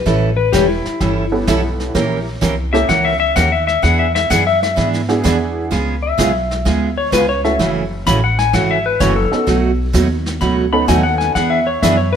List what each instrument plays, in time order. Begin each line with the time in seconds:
Already playing: electric slide guitar B4
0.06 upright bass A1, steel-string acoustic guitar E3 G3 C#4 E4 A4, brush sweep, kick, snare
0.37 electric slide guitar B4
0.53 upright bass E1, steel-string acoustic guitar E3 G3 C#4 E4 A4, electric slide guitar G4, kick, snare, hi-hat pedal
0.68 electric slide guitar E4
0.85 muted upright bass stroke, snare
1.00 upright bass G1, steel-string acoustic guitar E3 G3 C#4 E4 A4, brush sweep, kick, snare
1.32 honky-tonk piano B3 C#4 E4 G4 A4
1.47 upright bass B1, steel-string acoustic guitar E3 G3 C#4 E4 A4, kick, snare, hi-hat pedal
1.80 snare
1.95 upright bass A#1, steel-string acoustic guitar E3 A#3 C#4 G4 A#4, honky-tonk piano A#3 C#4 E4 G4 A#4, brush sweep, kick, snare
2.41 upright bass C2, steel-string acoustic guitar E3 A#3 C#4 G4 A#4, kick, snare, hi-hat pedal
2.73 honky-tonk piano A#3 C#4 E4 G4 A4, electric slide guitar E5, snare
2.89 upright bass C#2, steel-string acoustic guitar E3 A#3 C#4 G4 A#4, electric slide guitar F#5, brush sweep, kick, snare
3.05 electric slide guitar E5
3.20 electric slide guitar E5
3.36 upright bass D#2, steel-string acoustic guitar E3 A#3 C#4 G4 A#4, electric slide guitar F#5, kick, snare, hi-hat pedal
3.52 electric slide guitar E5
3.67 electric slide guitar E5, snare
3.82 upright bass E2, steel-string acoustic guitar E3 B3 D4 G#4, electric slide guitar F#5, brush sweep, kick, snare
3.99 electric slide guitar E5
4.15 electric slide guitar E5, snare
4.30 upright bass F#2, steel-string acoustic guitar E3 B3 D4 G#4, electric slide guitar F#5, kick, snare, hi-hat pedal
4.47 electric slide guitar E5
4.63 electric slide guitar E5, snare
4.76 upright bass G#2, steel-string acoustic guitar E3 B3 D4 G#4, brush sweep, kick, snare
4.93 snare
5.09 honky-tonk piano B3 D4 E4 F#4 G#4, snare
5.24 upright bass E2, steel-string acoustic guitar E3 B3 D4 G#4, kick, snare, hi-hat pedal
5.71 upright bass C#2, steel-string acoustic guitar C#3 G#3 B3 F4 G#4, brush sweep, kick, snare
6.03 electric slide guitar E5
6.18 upright bass B1, steel-string acoustic guitar C#3 G#3 B3 F4 G#4, kick, snare, hi-hat pedal
6.51 snare
6.65 upright bass D2, steel-string acoustic guitar C#3 G#3 B3 F4 G#4, brush sweep, kick, snare
6.98 electric slide guitar C#5
7.12 upright bass C#2, steel-string acoustic guitar C#3 G#3 B3 F4 G#4, electric slide guitar B4, kick, snare, hi-hat pedal
7.29 electric slide guitar C#5
7.44 honky-tonk piano A3 C#4 E4 F#4 A4, electric slide guitar E5, snare
7.59 upright bass F#1, steel-string acoustic guitar C#3 E3 A3 C#4 F#4, brush sweep, kick, snare
8.06 upright bass A1, steel-string acoustic guitar C#3 E3 A3 C#4 F#4, electric slide guitar B5, kick, snare, hi-hat pedal
8.24 electric slide guitar F#5
8.39 electric slide guitar G#5, snare
8.53 upright bass G#1, steel-string acoustic guitar C#3 E3 A3 C#4 F#4, electric slide guitar F#5, brush sweep, kick, snare
8.71 electric slide guitar E5
8.86 electric slide guitar B4
9.00 upright bass F#1, steel-string acoustic guitar C#3 E3 A3 C#4 F#4, electric slide guitar C#5, kick, snare, hi-hat pedal
9.16 electric slide guitar A4
9.32 honky-tonk piano B3 C#4 D#4 F#4 A4, muted upright bass stroke, snare
9.47 upright bass B1, steel-string acoustic guitar B2 F#3 A3 D#4 F#4, brush sweep, kick, snare
9.93 upright bass D#2, steel-string acoustic guitar B2 F#3 A3 D#4 F#4, kick, snare, hi-hat pedal
10.26 snare
10.41 upright bass C#2, steel-string acoustic guitar B2 F#3 A3 D#4 F#4, electric slide guitar B5, brush sweep, kick, snare
10.72 honky-tonk piano B3 C#4 D#4 F#4 A4, electric slide guitar B5
10.88 upright bass D#2, steel-string acoustic guitar B2 F#3 A3 D#4 F#4, electric slide guitar G#5, kick, snare, hi-hat pedal
11.03 electric slide guitar F#5
11.18 electric slide guitar G#5, snare
11.35 upright bass E2, steel-string acoustic guitar E3 B3 D4 G#4, electric slide guitar F#5, brush sweep, kick, snare
11.50 electric slide guitar E5
11.67 electric slide guitar C#5
11.82 upright bass F#2, steel-string acoustic guitar E3 B3 D4 G#4, electric slide guitar E5, kick, snare, hi-hat pedal
11.97 electric slide guitar C#5
12.13 electric slide guitar B4